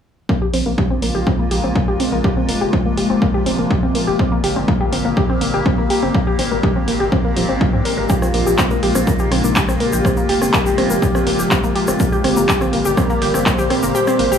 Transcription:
0.29 A#2 C#3 G#3 A#3 F4, kick
0.42 G4
0.54 A#1 C4, open hi-hat
0.66 A#1 A#3
0.78 G4, kick
0.90 A#1 C4
1.02 A#1 A#3, open hi-hat
1.15 A#1 G4
1.27 C4, kick
1.39 A#3
1.51 A#1 G4, open hi-hat
1.64 A#1 C4
1.75 A#3, kick
1.88 A#1 G4
2.00 C4, open hi-hat
2.12 A#1 A#3
2.24 C3 F3 G4, kick
2.37 C4
2.49 F1 A#3, open hi-hat
2.61 F1 G4
2.73 C4, kick
2.86 F1 A#3
2.97 F1 G4, open hi-hat
3.10 F1 C4
3.22 A#3, kick
3.34 G4
3.46 F1 C4, open hi-hat
3.59 F1 A#3
3.71 G4, kick
3.83 F1 C4
3.95 A#3, open hi-hat
4.07 F1 G4
4.19 D#3 G3 A#3 C4 G4, kick
4.32 A#3
4.44 G1 G4, open hi-hat
4.56 G1 C4
4.68 A#3, kick
4.81 G1 G4
4.93 G1 C4, open hi-hat
5.05 G1 A#3
5.17 G4, kick
5.29 C4
5.41 G1 A#3, open hi-hat
5.54 G1 G4
5.66 C4, kick
5.78 G1 A#3
5.90 G4, open hi-hat
6.03 G1 C4
6.14 D#3 G#3 A#3 C4, kick
6.27 G4
6.39 G#1 C4, open hi-hat
6.51 G#1 A#3
6.63 G4, kick
6.76 G#1 C4
6.88 G#1 A#3, open hi-hat
7.00 G#1 G4
7.12 C4, kick
7.25 A#3
7.36 D#1 F3, open hi-hat
7.49 G#1 C4
7.61 F4, kick
7.73 G#2 C4
7.85 A#4, open hi-hat
7.98 G#1 A#4
8.09 C#3 A#3 F4 G4, kick, shaker
8.22 C4, cross-stick, shaker
8.34 A#1 A#3, open hi-hat
8.47 A#1 G4, shaker
8.58 C4, kick, cross-stick, clap, shaker
8.70 A#1 A#3, shaker
8.83 A#1 G4, open hi-hat
8.95 A#1 C4, cross-stick, shaker
9.07 A#3 D#4, kick, shaker
9.19 G4, shaker
9.32 A#1 C4, cross-stick, open hi-hat
9.44 A#1 A#3, shaker
9.56 G4, kick, clap, shaker
9.68 A#1 C4, cross-stick, shaker
9.80 A#3, open hi-hat
9.93 A#1 G4, shaker
10.05 C3 F3 C4, kick, cross-stick, shaker
10.17 A#3, shaker
10.29 F1 G4, open hi-hat
10.42 F1 C4, cross-stick, shaker
10.53 A#3, kick, clap, shaker
10.66 F1 G4, shaker
10.78 F1 C4, cross-stick, open hi-hat
10.90 F1 A#3, shaker
11.02 G4, kick, shaker
11.15 C4, cross-stick, shaker
11.27 F1 A#3, open hi-hat
11.39 F1 G4, shaker
11.51 C4, kick, cross-stick, clap, shaker
11.64 F1 A#3, shaker
11.75 G4, open hi-hat
11.88 F1 C4, cross-stick, shaker
12.00 D#3 G3 A#3 G4, kick, shaker
12.12 G4, shaker
12.24 G1 C4, cross-stick, open hi-hat
12.37 G1 A#3, shaker
12.49 G4, kick, clap, shaker
12.61 G1 C4, cross-stick, shaker
12.73 G1 A#3, open hi-hat
12.85 G1 G4, shaker
12.97 C4 A#4, kick, cross-stick, shaker
13.10 A#3, shaker
13.22 G1 G4, open hi-hat
13.34 G1 C4, cross-stick, shaker
13.46 A#3 C5, kick, clap, shaker
13.58 G1 G4, shaker
13.70 C4, cross-stick, open hi-hat
13.83 G1 A#3, shaker
13.95 D#3 G#3 C4 G4, shaker
14.07 C4, cross-stick, shaker
14.19 G#1 A#3, open hi-hat
14.32 G#1 G4, shaker

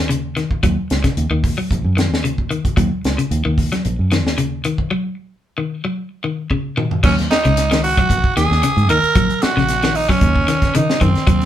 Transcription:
0.00 D#2
0.09 C#3, closed hi-hat
0.37 D#3, snare, closed hi-hat
0.50 muted fingered electric bass stroke, kick
0.63 D#2 F#3, kick, closed hi-hat
0.90 C#2, snare, closed hi-hat
1.04 C#3, kick, snare, closed hi-hat
1.17 D#2, closed hi-hat
1.30 D#2 D#3
1.44 kick, open hi-hat
1.58 F#3
1.71 A#1, kick, closed hi-hat
1.84 F#2
1.97 D#3, snare, closed hi-hat
2.12 D#2, snare
2.24 C#3, closed hi-hat
2.38 kick
2.51 D#3, closed hi-hat
2.65 muted fingered electric bass stroke, kick, closed hi-hat
2.77 D#2 F#3, kick, closed hi-hat
3.04 C#2, snare, closed hi-hat
3.18 C#3, closed hi-hat
3.31 D#2, closed hi-hat
3.45 D#2 D#3
3.58 kick, open hi-hat
3.72 F#3, snare, closed hi-hat
3.85 A#1, closed hi-hat
3.99 F#2
4.11 D#3, snare, closed hi-hat
4.24 D#2, snare
4.38 C#3, closed hi-hat
4.64 D#3, closed hi-hat
4.78 muted fingered electric bass stroke, kick
4.91 F#3
5.58 D#3
5.85 F#3
6.24 D#3
6.50 C#3, kick
6.77 D#3, mid tom
6.91 floor tom
7.04 D#2 F#3 C#4, kick, crash
7.18 snare, closed hi-hat
7.31 D#4, snare, closed hi-hat
7.45 C#2 C#3, closed hi-hat
7.57 snare, closed hi-hat
7.71 D#3, snare, closed hi-hat
7.83 F#4, open hi-hat
7.97 F#3, kick, closed hi-hat
8.10 A#1, kick, closed hi-hat
8.24 muted fingered electric bass stroke, kick
8.36 D#2 D#3 G#4, snare, closed hi-hat
8.51 D#2, snare
8.63 C#3, closed hi-hat
8.77 G#2, closed hi-hat
8.89 D#2 D#3 A#4, closed hi-hat
9.03 muted fingered electric bass stroke, closed hi-hat
9.15 A#1 F#3, kick, closed hi-hat
9.30 closed hi-hat
9.42 F#4, muted fingered electric bass stroke, snare, closed hi-hat
9.57 A#1 C#3, snare
9.68 snare, closed hi-hat
9.82 D#3, snare, closed hi-hat
9.95 D#4, open hi-hat
10.09 F#3 C#4, kick, snare
10.21 D#2, kick, closed hi-hat
10.35 kick
10.48 D#3, snare, closed hi-hat
10.62 kick, snare, closed hi-hat
10.75 C#3 D#3 D#4, closed hi-hat
10.90 snare
11.01 F#2 D#3 C4, kick, closed hi-hat
11.15 muted fingered electric bass stroke, snare, closed hi-hat
11.27 D#2 F#3, kick, closed hi-hat
11.41 closed hi-hat

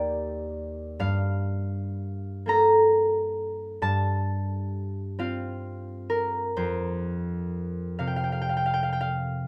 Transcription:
Already playing: D#2 A#3 G4 D5 D#5 F5
0.99 G2 F5
2.46 A#3 A4 A#5
3.82 G2 A5
5.19 C4 F4 F5
6.10 A#4
6.57 F2 C5
7.99 C3 F5
8.07 G5
8.16 F5
8.24 G5
8.32 F5
8.41 G5
8.49 F5
8.57 G5
8.66 F5
8.74 G5
8.83 F5
8.93 G5
9.01 F5

